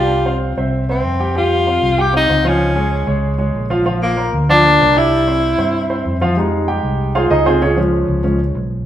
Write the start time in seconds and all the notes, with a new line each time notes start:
Already playing: C2 G3 F4 G4 G5
0.26 C4 C5 F5
0.57 C2 C4 C5 E5
0.89 C4 C5 E5
1.04 F2
1.20 G3 G4 G5
1.36 G3 F4 G4 G5
1.67 C4 C5 F5
1.82 C2
1.98 G3 G4 G5
2.13 C4 D#4 C5 F5
2.29 C#2 C4 C5 F5
2.45 F3 C#4 F4 F5
2.76 G#3 G#4 C#5
3.07 C#2 G#3 G#4 C#5
3.38 G#3 G#4 C#5
3.55 A#1
3.70 F3 F4 F5
3.86 F3 F4 F5
4.02 A#3
4.17 A#3 A#4 C5
4.33 D2
4.49 F3 D4 F4 F5
4.64 A#3 A#4 C5
4.80 C2 A#3 A#4 C5
4.95 G3 E4 G4 G5
5.27 C4 C5 E5
5.58 G2 C4 C5 E5
5.90 C4 C5 E5
6.05 F2
6.21 F3 F4 F5
6.36 G3 G#3 D#4
6.68 G4 G5
6.83 C2
7.15 F4 G#4 C5 F5
7.30 C#2 D#4 G#4 C5 D#5
7.46 C4 F4 G#4 C5
7.62 C#4 F4 G#4 C#5
7.76 F3 G#3 C#4
8.08 C#2
8.24 F3 G#3 C#4
8.55 B1